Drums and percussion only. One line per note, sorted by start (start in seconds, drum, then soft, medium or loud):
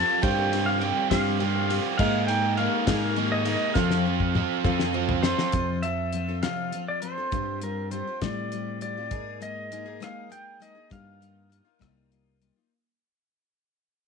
0.23 kick loud
0.23 ride loud
0.53 ride medium
0.81 ride medium
1.11 kick medium
1.11 snare loud
1.11 ride loud
1.40 ride medium
1.70 ride medium
1.99 kick loud
1.99 crash loud
2.28 ride medium
2.57 ride medium
2.87 kick medium
2.87 snare loud
2.87 ride loud
3.16 ride medium
3.45 ride medium
3.75 kick loud
3.75 snare medium
3.91 snare medium
4.20 kick medium
4.35 mid tom medium
4.65 kick medium
4.65 mid tom medium
4.80 snare medium
5.09 floor tom medium
5.23 snare loud
5.39 snare medium
5.52 kick loud
5.52 closed hi-hat medium
5.83 closed hi-hat soft
6.12 closed hi-hat medium
6.43 snare medium
6.43 closed hi-hat medium
6.72 closed hi-hat medium
7.02 closed hi-hat medium
7.32 kick loud
7.32 closed hi-hat medium
7.62 closed hi-hat medium
7.91 closed hi-hat medium
8.22 kick medium
8.22 snare medium
8.22 closed hi-hat medium
8.52 closed hi-hat medium
8.81 closed hi-hat medium
9.11 kick medium
9.11 closed hi-hat medium
9.42 closed hi-hat medium
9.72 closed hi-hat medium
10.02 cross-stick medium
10.02 closed hi-hat medium
10.32 closed hi-hat medium
10.62 closed hi-hat soft
10.91 kick loud
10.91 closed hi-hat medium
11.22 closed hi-hat soft
11.52 closed hi-hat soft
11.81 kick medium
11.81 cross-stick medium
11.81 closed hi-hat medium
12.12 closed hi-hat soft
12.42 closed hi-hat medium